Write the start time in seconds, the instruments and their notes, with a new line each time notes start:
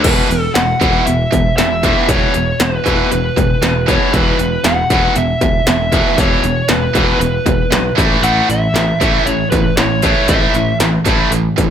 0.03 picked electric bass E1, overdriven electric guitar E2 B2 E3, lead electric guitar B4, kick, open hi-hat, crash
0.30 picked electric bass E1, overdriven electric guitar E2 B2, open hi-hat
0.54 picked electric bass E1, overdriven electric guitar E2 B2, lead electric guitar F#5, snare, open hi-hat
0.81 picked electric bass E1, overdriven electric guitar E2 B2 E3, kick, open hi-hat
1.06 picked electric bass E1, overdriven electric guitar E2 B2, lead electric guitar E5, open hi-hat
1.32 picked electric bass E1, overdriven electric guitar E2 B2, kick, open hi-hat
1.57 picked electric bass E1, overdriven electric guitar E2 B2, lead electric guitar E5, snare, open hi-hat
1.83 overdriven electric guitar E2 B2 E3, kick, open hi-hat
2.09 picked electric bass E1, overdriven electric guitar E2 B2 E3, lead electric guitar C#5, kick, open hi-hat
2.34 picked electric bass E1, overdriven electric guitar E2 B2, open hi-hat
2.60 picked electric bass E1, overdriven electric guitar E2 B2, lead electric guitar B4, snare, open hi-hat
2.86 picked electric bass E1, overdriven electric guitar E2 B2 E3, kick, open hi-hat
3.11 picked electric bass E1, overdriven electric guitar E2 B2, lead electric guitar B4, open hi-hat
3.37 picked electric bass E1, overdriven electric guitar E2 B2, kick, open hi-hat
3.62 picked electric bass E1, overdriven electric guitar E2 B2, snare, open hi-hat
3.87 overdriven electric guitar E2 B2 E3, lead electric guitar C#5, kick, open hi-hat
4.12 picked electric bass E1, overdriven electric guitar E2 B2 E3, lead electric guitar B4, kick, open hi-hat
4.38 picked electric bass E1, overdriven electric guitar E2 B2, open hi-hat
4.64 picked electric bass E1, overdriven electric guitar E2 B2, lead electric guitar F#5, snare, open hi-hat
4.90 picked electric bass E1, overdriven electric guitar E2 B2 E3, kick, open hi-hat
5.15 picked electric bass E1, overdriven electric guitar E2 B2, lead electric guitar E5, open hi-hat
5.41 picked electric bass E1, overdriven electric guitar E2 B2, kick, open hi-hat
5.67 picked electric bass E1, overdriven electric guitar E2 B2, lead electric guitar E5, snare, open hi-hat
5.92 overdriven electric guitar E2 B2 E3, kick, open hi-hat
6.18 picked electric bass E1, overdriven electric guitar E2 B2 E3, lead electric guitar C#5, kick, open hi-hat
6.43 picked electric bass E1, overdriven electric guitar E2 B2, open hi-hat
6.68 picked electric bass E1, overdriven electric guitar E2 B2, lead electric guitar B4, snare, open hi-hat
6.95 picked electric bass E1, overdriven electric guitar E2 B2 E3, kick, open hi-hat
7.20 picked electric bass E1, overdriven electric guitar E2 B2, lead electric guitar B4, open hi-hat
7.46 picked electric bass E1, overdriven electric guitar E2 B2, kick, open hi-hat
7.71 picked electric bass B1, overdriven electric guitar E2 B2, snare, open hi-hat
7.96 picked electric bass A1, overdriven electric guitar A2 E3 A3, kick, open hi-hat
8.23 picked electric bass A1, overdriven electric guitar A2 E3 A3, lead electric guitar F#5, open hi-hat
8.48 picked electric bass A1, overdriven electric guitar A2 E3, lead electric guitar E5, open hi-hat
8.74 picked electric bass A1, overdriven electric guitar A2 E3, snare, open hi-hat
9.01 picked electric bass A1, overdriven electric guitar A2 E3 A3, kick, open hi-hat
9.26 picked electric bass A1, overdriven electric guitar A2 E3, lead electric guitar C#5, open hi-hat
9.51 picked electric bass A1, overdriven electric guitar A2 E3, lead electric guitar B4, kick, open hi-hat
9.77 picked electric bass A1, overdriven electric guitar A2 E3, lead electric guitar C#5, snare, open hi-hat
10.02 overdriven electric guitar A2 E3 A3, kick, open hi-hat
10.28 picked electric bass A1, overdriven electric guitar A2 E3 A3, lead electric guitar E5, kick, open hi-hat
10.54 picked electric bass A1, overdriven electric guitar A2 E3, open hi-hat
10.80 picked electric bass A1, overdriven electric guitar A2 E3, snare, open hi-hat
11.05 picked electric bass A1, overdriven electric guitar A2 E3 A3, kick, open hi-hat
11.31 picked electric bass A1, overdriven electric guitar A2 E3, open hi-hat
11.58 picked electric bass A1, overdriven electric guitar A2 E3, kick, open hi-hat